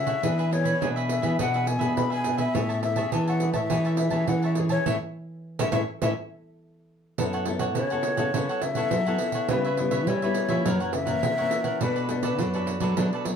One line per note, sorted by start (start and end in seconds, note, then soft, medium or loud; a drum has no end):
0.00 0.15 C#3 medium
0.00 0.21 C#3 medium
0.00 0.19 A3 medium
0.00 0.19 E4 medium
0.00 0.19 G#4 medium
0.00 0.55 E5 medium
0.06 0.22 A4 soft
0.06 0.21 C#5 medium
0.06 0.21 F#5 medium
0.06 pandeiro medium
0.23 0.79 E3 medium
0.23 0.73 E3 medium
0.23 0.48 B3 soft
0.23 0.36 D4 soft
0.23 0.48 D4 soft
0.23 0.36 G#4 soft
0.23 0.48 G#4 medium
0.23 0.37 B4 soft
0.23 0.37 E5 soft
0.23 pandeiro medium
0.38 0.50 G#4 soft
0.38 0.50 B4 medium
0.38 0.51 E5 medium
0.38 pandeiro soft
0.51 0.76 B3 medium
0.51 0.77 D4 medium
0.51 0.77 G#4 medium
0.51 0.88 C#5 medium
0.51 muted cavaquinho stroke soft
0.51 pandeiro medium
0.64 0.79 G#4 medium
0.64 0.79 B4 medium
0.64 0.79 E5 medium
0.64 pandeiro medium
0.81 1.37 B2 medium
0.81 1.19 B2 medium
0.81 1.21 B3 medium
0.81 0.94 D4 medium
0.81 1.21 D4 medium
0.81 0.95 G#4 soft
0.81 1.21 G#4 medium
0.81 0.95 B4 soft
0.81 0.95 E5 medium
0.81 pandeiro medium
0.96 1.23 G#4 medium
0.96 1.22 B4 medium
0.96 1.21 E5 medium
0.96 pandeiro soft
1.09 1.37 E5 medium
1.09 pandeiro medium
1.22 1.37 E3 medium
1.22 1.34 B3 medium
1.22 1.35 D4 medium
1.22 1.38 G#4 medium
1.22 1.35 G#4 medium
1.22 1.37 B4 medium
1.22 1.37 E5 medium
1.22 pandeiro medium
1.39 1.77 B2 loud
1.39 1.95 E3 medium
1.39 1.67 B3 medium
1.39 1.52 D4 medium
1.39 1.67 D4 medium
1.39 1.52 G#4 medium
1.39 1.68 G#4 medium
1.39 1.53 B4 medium
1.39 1.53 E5 soft
1.39 1.69 F#5 medium
1.39 pandeiro medium
1.54 1.66 G#4 soft
1.54 1.66 B4 medium
1.54 1.66 E5 medium
1.54 pandeiro soft
1.66 1.96 G#5 medium
1.66 muted cavaquinho stroke soft
1.66 pandeiro medium
1.79 1.94 B2 medium
1.79 2.21 B3 medium
1.79 2.21 D4 medium
1.79 2.09 G#4 soft
1.79 2.09 B4 medium
1.79 2.09 E5 medium
1.79 pandeiro medium
1.83 2.22 G#4 medium
1.97 2.52 B2 medium
1.97 2.47 B2 medium
1.97 2.10 B5 medium
1.97 pandeiro medium
2.10 2.38 G#4 medium
2.10 2.37 B4 medium
2.10 2.36 E5 medium
2.10 2.38 G#5 medium
2.10 pandeiro soft
2.24 2.44 B3 medium
2.24 2.45 D4 medium
2.24 2.45 G#4 medium
2.24 pandeiro medium
2.38 2.53 G#4 soft
2.38 2.53 B4 medium
2.38 2.52 E5 medium
2.38 2.80 E5 medium
2.38 pandeiro medium
2.54 3.05 A2 medium
2.54 3.11 A3 medium
2.54 2.83 C#4 medium
2.54 2.83 E4 medium
2.54 2.68 G#4 soft
2.54 2.83 G#4 medium
2.54 2.68 C#5 soft
2.54 2.68 E5 medium
2.54 2.68 A5 medium
2.54 pandeiro medium
2.69 2.82 C#5 soft
2.69 2.82 E5 medium
2.69 2.83 A5 medium
2.69 pandeiro soft
2.83 3.11 E5 medium
2.83 muted cavaquinho stroke soft
2.83 pandeiro medium
2.96 3.37 C#4 medium
2.96 3.37 E4 medium
2.96 3.37 G#4 medium
2.96 3.11 C#5 soft
2.96 3.11 E5 medium
2.96 3.11 A5 medium
2.96 pandeiro medium
3.12 3.68 E3 medium
3.12 3.50 E3 medium
3.12 3.26 G#4 soft
3.12 3.26 C#5 soft
3.12 3.27 E5 soft
3.12 3.27 A5 soft
3.12 3.27 A5 medium
3.12 pandeiro medium
3.28 3.54 C#5 soft
3.28 3.54 E5 medium
3.28 3.53 F#5 medium
3.28 3.52 A5 medium
3.28 pandeiro soft
3.40 3.59 C#4 soft
3.40 3.59 E4 medium
3.40 3.59 G#4 medium
3.40 pandeiro medium
3.53 3.68 A2 medium
3.53 3.69 C#5 medium
3.53 3.95 E5 medium
3.53 3.69 E5 medium
3.53 3.68 A5 medium
3.53 pandeiro medium
3.70 4.08 E3 medium
3.70 4.27 A3 medium
3.70 4.10 C#4 medium
3.70 4.11 E4 medium
3.70 3.84 G#4 soft
3.70 4.11 G#4 medium
3.70 3.84 C#5 soft
3.70 3.84 E5 soft
3.70 3.84 A5 medium
3.70 pandeiro medium
3.85 3.97 C#5 medium
3.85 3.98 E5 medium
3.85 3.97 A5 medium
3.85 pandeiro soft
3.97 4.30 E5 medium
3.97 muted cavaquinho stroke soft
3.97 pandeiro medium
4.10 4.26 E3 medium
4.10 4.53 C#4 medium
4.10 4.53 E4 medium
4.10 4.53 G#4 medium
4.10 4.41 C#5 soft
4.10 4.41 E5 soft
4.10 4.40 A5 medium
4.10 pandeiro soft
4.27 4.78 E3 medium
4.27 4.84 E3 medium
4.27 4.43 F#5 medium
4.27 pandeiro medium
4.42 4.70 C#5 medium
4.42 4.70 E5 medium
4.42 4.52 E5 medium
4.42 4.69 A5 medium
4.42 pandeiro soft
4.55 4.82 C#4 soft
4.55 4.82 E4 medium
4.55 4.83 G#4 medium
4.55 pandeiro medium
4.69 4.85 C#5 medium
4.69 4.85 E5 medium
4.69 4.84 A5 medium
4.69 pandeiro medium
4.86 4.97 A2 loud
4.86 4.96 A3 medium
4.86 4.96 C#4 medium
4.86 4.96 E4 medium
4.86 4.96 A4 medium
4.86 4.96 C#5 medium
4.86 4.96 E5 medium
4.86 4.97 E5 medium
4.86 pandeiro medium
5.59 5.70 A2 medium
5.59 5.69 A3 medium
5.59 5.69 C#4 medium
5.59 5.69 E4 medium
5.59 5.69 A4 medium
5.59 5.69 C#5 medium
5.59 5.69 E5 medium
5.59 pandeiro medium
5.72 5.84 A2 medium
5.72 5.82 A3 medium
5.72 5.82 C#4 medium
5.72 5.82 E4 medium
5.72 5.82 A4 medium
5.72 5.82 C#5 medium
5.72 5.82 E5 medium
5.72 pandeiro medium
6.02 6.13 A2 medium
6.02 6.12 A3 medium
6.02 6.12 C#4 medium
6.02 6.12 E4 medium
6.02 6.12 A4 medium
6.02 6.12 C#5 medium
6.02 6.12 E5 medium
6.02 pandeiro medium
7.18 7.77 F#2 loud
7.18 7.74 F#3 medium
7.18 7.43 B3 medium
7.18 7.32 E4 soft
7.18 7.43 E4 soft
7.18 7.32 A4 medium
7.18 7.43 A4 medium
7.18 7.32 C#5 soft
7.18 7.33 F#5 soft
7.18 pandeiro medium
7.33 7.46 A4 medium
7.33 7.46 C#5 medium
7.33 7.46 F#5 medium
7.33 pandeiro soft
7.45 7.86 B3 medium
7.45 7.86 E4 medium
7.45 7.87 A4 medium
7.45 muted cavaquinho stroke soft
7.45 pandeiro medium
7.59 7.75 A4 medium
7.59 7.74 C#5 medium
7.59 7.74 F#5 medium
7.59 pandeiro medium
7.75 8.14 C#3 medium
7.75 8.32 C#3 medium
7.75 7.89 E4 soft
7.75 7.90 A4 soft
7.75 7.90 C#5 soft
7.75 8.64 C#5 medium
7.75 7.90 F#5 soft
7.75 pandeiro medium
7.90 8.16 B3 medium
7.90 8.16 E4 medium
7.90 8.18 A4 medium
7.90 8.16 A4 medium
7.90 8.17 C#5 medium
7.90 8.16 F#5 medium
7.90 pandeiro soft
8.03 pandeiro medium
8.17 8.31 C#3 medium
8.17 8.29 B3 medium
8.17 8.29 E4 medium
8.17 8.33 A4 medium
8.17 8.29 A4 medium
8.17 8.32 C#5 medium
8.17 8.32 F#5 medium
8.17 pandeiro medium
8.34 8.47 C#3 loud
8.34 8.90 F#3 medium
8.34 8.62 B3 medium
8.34 8.47 E4 soft
8.34 8.62 E4 medium
8.34 8.48 A4 medium
8.34 8.62 A4 medium
8.34 8.48 C#5 soft
8.34 8.48 F#5 medium
8.34 pandeiro medium
8.49 8.62 A4 medium
8.49 8.63 C#5 medium
8.49 8.62 F#5 medium
8.49 pandeiro soft
8.62 8.88 C#3 medium
8.62 9.52 E5 loud
8.62 muted cavaquinho stroke soft
8.62 pandeiro medium
8.75 9.01 B3 medium
8.75 9.01 E4 medium
8.75 9.02 A4 medium
8.75 9.06 A4 medium
8.75 9.05 C#5 medium
8.75 9.05 F#5 medium
8.75 pandeiro medium
8.91 9.48 C#3 medium
8.91 9.17 F#3 medium
8.91 pandeiro medium
9.06 9.46 B3 medium
9.06 9.46 E4 medium
9.06 9.46 A4 medium
9.06 9.34 A4 medium
9.06 9.34 C#5 medium
9.06 9.33 F#5 medium
9.06 pandeiro soft
9.18 pandeiro medium
9.32 9.49 A4 medium
9.32 9.49 C#5 medium
9.32 9.48 F#5 medium
9.32 pandeiro medium
9.49 10.05 C#3 medium
9.49 10.08 C#3 loud
9.49 9.67 G3 medium
9.49 9.68 B3 medium
9.49 9.68 E4 medium
9.49 9.63 G4 soft
9.49 10.09 B4 medium
9.49 9.64 B4 soft
9.49 9.64 C#5 medium
9.49 9.64 E5 medium
9.49 pandeiro medium
9.64 9.78 B4 medium
9.64 9.78 C#5 medium
9.64 9.78 E5 medium
9.64 pandeiro soft
9.77 10.06 G3 medium
9.77 10.06 B3 medium
9.77 10.07 E4 medium
9.77 muted cavaquinho stroke soft
9.77 pandeiro medium
9.91 10.07 B4 medium
9.91 10.06 C#5 medium
9.91 10.06 E5 medium
9.91 pandeiro medium
10.07 10.64 C#3 medium
10.07 10.45 G3 medium
10.07 10.21 G4 soft
10.07 10.22 B4 soft
10.07 10.94 C#5 medium
10.07 10.22 C#5 soft
10.07 10.21 E5 medium
10.07 pandeiro medium
10.22 10.48 G3 medium
10.22 10.48 B3 medium
10.22 10.48 E4 medium
10.22 10.50 B4 medium
10.22 10.49 C#5 medium
10.22 10.49 E5 medium
10.22 pandeiro soft
10.35 pandeiro medium
10.49 11.04 E3 medium
10.49 10.62 F3 medium
10.49 11.04 A#3 medium
10.49 11.04 C#4 medium
10.49 10.65 B4 medium
10.49 10.64 C#5 medium
10.49 10.64 E5 medium
10.49 pandeiro medium
10.65 11.21 F#2 medium
10.65 10.78 F#3 loud
10.65 10.79 E4 soft
10.65 10.80 A#4 medium
10.65 10.80 C#5 medium
10.65 10.79 F#5 medium
10.65 pandeiro medium
10.80 10.92 A#4 medium
10.80 10.93 C#5 medium
10.80 10.93 F#5 medium
10.80 pandeiro soft
10.93 11.19 C#3 medium
10.93 11.84 E5 loud
10.93 muted cavaquinho stroke soft
10.93 pandeiro medium
11.06 11.33 E3 medium
11.06 11.33 A#3 medium
11.06 11.33 C#4 medium
11.06 11.36 A#4 medium
11.06 11.36 C#5 medium
11.06 11.35 F#5 medium
11.06 pandeiro medium
11.23 11.48 C3 medium
11.23 11.79 C#3 medium
11.23 pandeiro medium
11.38 11.78 E3 medium
11.38 11.78 A#3 medium
11.38 11.78 C#4 medium
11.38 11.64 A#4 medium
11.38 11.64 C#5 medium
11.38 11.63 F#5 medium
11.38 pandeiro soft
11.51 pandeiro medium
11.64 11.80 A#4 medium
11.64 11.79 C#5 medium
11.64 11.79 F#5 medium
11.64 pandeiro medium
11.81 12.40 B2 loud
11.81 12.37 B2 medium
11.81 12.06 A3 medium
11.81 11.95 D4 soft
11.81 12.06 D4 medium
11.81 12.06 F#4 medium
11.81 11.95 A4 soft
11.81 11.95 B4 medium
11.81 12.69 B4 medium
11.81 11.95 D5 medium
11.81 pandeiro medium
11.96 12.09 A4 medium
11.96 12.09 B4 medium
11.96 12.09 D5 medium
11.96 pandeiro soft
12.09 12.37 A3 medium
12.09 12.37 D4 medium
12.09 12.38 F#4 medium
12.09 muted cavaquinho stroke soft
12.09 pandeiro medium
12.23 12.38 A4 medium
12.23 12.38 B4 medium
12.23 12.37 D5 medium
12.23 pandeiro medium
12.38 12.94 F#2 medium
12.38 12.77 F#3 medium
12.38 12.53 D4 soft
12.38 12.53 A4 soft
12.38 12.53 B4 soft
12.38 12.53 D5 medium
12.38 pandeiro medium
12.54 12.78 A3 medium
12.54 12.78 D4 medium
12.54 12.79 F#4 medium
12.54 12.82 A4 medium
12.54 12.81 B4 medium
12.54 12.80 D5 medium
12.54 pandeiro soft
12.67 pandeiro medium
12.80 12.94 F#3 medium
12.80 12.92 A3 medium
12.80 12.92 D4 medium
12.80 12.92 F#4 medium
12.80 12.96 A4 medium
12.80 12.96 B4 medium
12.80 12.96 D5 medium
12.80 pandeiro medium
12.97 13.36 B2 medium
12.97 13.10 F#3 loud
12.97 13.24 A3 medium
12.97 13.25 D4 medium
12.97 13.11 D4 soft
12.97 13.25 F#4 medium
12.97 13.11 A4 medium
12.97 13.11 B4 medium
12.97 13.12 D5 medium
12.97 pandeiro medium
13.13 13.25 A4 medium
13.13 13.25 B4 medium
13.13 13.26 D5 medium
13.13 pandeiro soft
13.25 13.36 F#3 medium
13.25 muted cavaquinho stroke soft
13.25 pandeiro medium